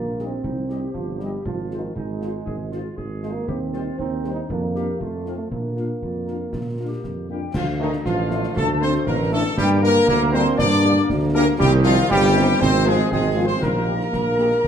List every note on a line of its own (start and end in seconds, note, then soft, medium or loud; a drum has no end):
0.00 0.36 A#1 soft
0.00 0.24 A#3 medium
0.00 0.40 F4 soft
0.19 0.29 G3 soft
0.19 0.29 D#4 soft
0.19 0.28 G4 soft
0.19 0.28 D#5 soft
0.19 snare soft
0.27 0.91 C4 medium
0.44 0.86 C2 soft
0.44 0.67 D#4 soft
0.44 concert bass drum medium
0.69 0.79 G3 soft
0.69 0.79 D#4 soft
0.69 1.45 G4 soft
0.69 0.79 G4 soft
0.69 0.79 D#5 soft
0.69 snare soft
0.94 1.37 G1 soft
0.94 1.22 F3 medium
0.94 concert bass drum medium
1.20 1.45 G3 soft
1.20 1.30 G3 soft
1.20 1.30 D#4 soft
1.20 1.30 G4 soft
1.20 1.30 D#5 soft
1.20 snare soft
1.45 1.88 G#1 soft
1.45 1.81 F3 medium
1.45 1.93 F4 soft
1.45 concert bass drum medium
1.71 1.81 G#3 soft
1.71 1.81 D#4 soft
1.71 1.81 F4 soft
1.71 1.81 C5 soft
1.71 snare soft
1.79 1.95 D#3 medium
1.96 2.38 G#1 soft
1.96 2.94 G#3 medium
1.96 2.43 D#4 soft
1.96 concert bass drum medium
2.21 2.31 G#3 soft
2.21 2.31 D#4 soft
2.21 2.31 F4 soft
2.21 2.31 C5 soft
2.21 snare soft
2.46 2.84 G#1 medium
2.46 2.58 G#4 medium
2.46 concert bass drum medium
2.72 2.81 G#3 soft
2.72 2.82 D#4 soft
2.72 2.96 F4 medium
2.72 2.82 F4 soft
2.72 2.82 C5 soft
2.72 snare soft
2.97 3.40 G#1 medium
2.97 3.45 G#4 medium
2.97 concert bass drum medium
3.23 3.34 G#3 medium
3.23 3.33 G#3 soft
3.23 3.33 D#4 soft
3.23 3.32 F4 soft
3.23 3.32 C5 soft
3.23 snare soft
3.33 3.51 A#3 medium
3.48 3.90 D#2 medium
3.48 3.98 C4 medium
3.48 3.60 G4 medium
3.48 concert bass drum medium
3.74 3.83 G3 soft
3.74 3.83 D#4 soft
3.74 3.98 F4 medium
3.74 3.83 G4 soft
3.74 3.83 C5 medium
3.74 snare soft
3.99 4.41 D#2 medium
3.99 4.30 C4 medium
3.99 4.47 D#4 soft
3.99 concert bass drum medium
4.24 4.34 G3 medium
4.24 4.34 D#4 soft
4.24 4.34 G4 soft
4.24 4.34 C5 soft
4.24 snare soft
4.34 4.41 D#4 medium
4.50 4.92 F2 medium
4.50 5.02 A#3 medium
4.50 4.61 D4 soft
4.50 concert bass drum medium
4.76 4.85 A#3 soft
4.76 4.85 D4 soft
4.76 4.85 F4 soft
4.76 4.99 G4 medium
4.76 4.85 F5 soft
4.76 snare soft
5.00 5.43 F2 soft
5.00 5.35 A3 medium
5.00 5.52 F4 soft
5.00 concert bass drum medium
5.26 5.35 C4 soft
5.26 5.35 D#4 soft
5.26 5.35 F4 soft
5.26 5.36 F5 soft
5.26 snare soft
5.35 5.51 A3 medium
5.51 5.94 A#2 soft
5.51 7.26 A#3 medium
5.51 5.98 D4 soft
5.51 concert bass drum medium
5.77 5.86 A#3 soft
5.77 5.86 D4 soft
5.77 5.86 F4 soft
5.77 5.87 F5 soft
5.77 snare soft
6.02 6.45 F2 soft
6.02 6.50 F4 soft
6.02 concert bass drum medium
6.28 6.37 A#3 soft
6.28 6.37 D4 soft
6.28 6.37 F4 soft
6.28 6.37 F5 soft
6.28 snare soft
6.53 6.95 A#2 soft
6.53 6.85 F4 soft
6.53 concert bass drum medium
6.53 snare soft
6.78 6.88 A#3 soft
6.78 6.88 D4 soft
6.78 6.88 F4 soft
6.78 6.88 F5 soft
6.88 7.27 G4 soft
7.04 7.46 F2 soft
7.04 concert bass drum soft
7.04 snare soft
7.29 7.41 G3 soft
7.29 7.39 A#3 soft
7.29 7.39 D4 soft
7.29 7.39 F4 soft
7.29 7.41 G4 medium
7.29 7.53 G4 soft
7.29 7.38 F5 soft
7.29 7.53 G5 medium
7.54 7.97 D2 medium
7.54 9.53 D3 medium
7.54 7.66 F3 medium
7.54 9.53 A3 loud
7.54 7.66 F4 medium
7.54 7.67 F4 medium
7.54 7.80 F5 medium
7.54 concert bass drum medium
7.54 snare medium
7.54 crash medium
7.80 7.92 D#3 medium
7.80 7.89 A3 medium
7.80 7.89 D4 medium
7.80 7.91 D#4 medium
7.80 7.92 D#4 medium
7.80 8.05 D#5 medium
7.93 snare soft
8.04 8.48 A1 medium
8.04 8.52 F3 medium
8.04 8.52 F4 medium
8.04 8.53 F4 medium
8.04 8.52 F5 medium
8.04 concert bass drum medium
8.04 snare medium
8.31 8.40 A3 medium
8.31 8.40 D4 medium
8.31 snare medium
8.43 snare medium
8.56 8.98 D2 medium
8.56 8.67 A3 medium
8.56 8.67 A4 loud
8.56 8.82 A4 medium
8.56 8.80 A5 loud
8.56 concert bass drum loud
8.56 snare medium
8.81 8.90 A3 medium
8.81 8.93 C4 medium
8.81 8.90 D4 medium
8.81 8.92 C5 loud
8.81 9.07 C5 loud
8.81 9.07 C6 loud
8.81 snare medium
8.95 snare medium
9.06 9.46 A1 medium
9.06 9.18 A#3 medium
9.06 9.30 A#4 medium
9.06 9.31 A#5 medium
9.06 concert bass drum medium
9.06 snare medium
9.31 9.43 A3 medium
9.31 9.42 A3 medium
9.31 9.42 D4 medium
9.31 9.55 A4 medium
9.31 9.56 A4 loud
9.31 9.38 A5 medium
9.57 10.00 G2 loud
9.57 11.56 D3 loud
9.57 9.81 G3 loud
9.57 11.56 A#3 loud
9.57 9.69 G4 loud
9.57 9.81 G4 loud
9.57 9.81 G5 loud
9.57 concert bass drum medium
9.57 snare medium
9.57 crash soft
9.82 9.92 G3 medium
9.82 10.06 A#3 loud
9.82 9.92 A#3 medium
9.82 9.92 D4 medium
9.82 10.06 A#4 loud
9.82 10.07 A#4 loud
9.82 10.07 A#5 loud
9.96 snare medium
10.07 10.50 D2 medium
10.07 10.34 A#3 loud
10.07 10.31 A#4 loud
10.07 10.20 A#4 loud
10.07 10.32 A#5 loud
10.07 concert bass drum medium
10.07 snare medium
10.33 10.43 G3 medium
10.33 10.43 A#3 medium
10.33 10.60 C4 loud
10.33 10.43 D4 medium
10.33 10.44 C5 loud
10.33 10.45 C5 loud
10.33 10.59 C6 loud
10.33 snare medium
10.46 snare medium
10.58 11.01 G2 medium
10.58 11.09 D4 loud
10.58 11.06 D5 loud
10.58 11.06 D6 loud
10.58 concert bass drum loud
10.58 snare medium
10.84 10.94 G3 medium
10.84 10.94 A#3 medium
10.84 10.93 D4 medium
10.84 snare medium
10.97 snare medium
11.10 11.52 D2 loud
11.10 concert bass drum medium
11.10 snare medium
11.34 11.44 G3 medium
11.34 11.46 A#3 loud
11.34 11.44 A#3 medium
11.34 11.44 D4 loud
11.34 11.46 A#4 loud
11.34 11.40 A#5 loud
11.59 12.02 C2 loud
11.59 12.07 D#3 loud
11.59 11.71 G3 loud
11.59 12.07 C4 loud
11.59 11.71 G4 loud
11.59 11.66 G5 loud
11.59 concert bass drum loud
11.59 snare medium
11.59 crash soft
11.84 11.96 F3 loud
11.84 11.95 G3 medium
11.84 11.95 C4 medium
11.84 11.95 D#4 medium
11.84 12.08 F4 loud
11.84 12.09 F4 loud
11.84 12.08 F5 loud
11.98 snare medium
12.09 12.53 G1 loud
12.09 12.58 D#3 medium
12.09 12.63 G3 loud
12.09 12.57 C4 medium
12.09 12.57 G4 loud
12.09 12.58 G4 loud
12.09 12.57 G5 loud
12.09 concert bass drum medium
12.09 snare medium
12.36 12.45 G3 medium
12.36 12.45 C4 medium
12.36 12.46 D#4 medium
12.36 snare medium
12.49 snare medium
12.60 13.03 G#1 loud
12.60 13.11 F3 loud
12.60 13.08 C4 loud
12.60 12.88 C4 loud
12.60 12.84 C5 loud
12.60 12.85 C5 loud
12.60 12.86 C6 loud
12.60 concert bass drum medium
12.60 snare medium
12.86 12.96 F3 medium
12.86 13.11 G#3 loud
12.86 12.96 C4 medium
12.86 12.96 F4 medium
12.86 13.10 G#4 loud
12.86 13.10 G#5 loud
12.86 snare medium
13.00 snare medium
13.11 13.54 G#1 medium
13.11 13.59 F3 medium
13.11 13.47 G#3 loud
13.11 13.60 C4 medium
13.11 13.43 G#4 loud
13.11 13.43 G#5 loud
13.11 concert bass drum medium
13.11 snare medium
13.37 13.46 F3 medium
13.37 13.46 C4 medium
13.37 13.46 F4 medium
13.45 13.63 C4 medium
13.45 13.53 C5 medium
13.45 13.62 C5 loud
13.45 13.61 C6 medium
13.62 14.05 A#1 medium
13.62 14.08 G3 medium
13.62 14.68 A#3 medium
13.62 14.05 D#4 medium
13.62 14.68 A#4 medium
13.62 14.68 A#4 loud
13.62 14.68 A#5 medium
13.62 concert bass drum medium
13.62 snare medium
13.62 crash soft
13.88 13.98 A#3 medium
13.88 13.98 D#4 medium
13.88 13.97 G4 medium
14.01 snare soft
14.13 14.56 A#1 medium
14.13 14.25 A#3 medium
14.13 concert bass drum medium
14.13 snare medium
14.39 14.50 G#3 medium
14.39 14.48 A#3 medium
14.39 14.48 D#4 medium
14.39 14.48 G4 medium
14.39 snare medium
14.51 snare medium
14.64 14.68 A#1 medium
14.64 concert bass drum medium
14.64 snare medium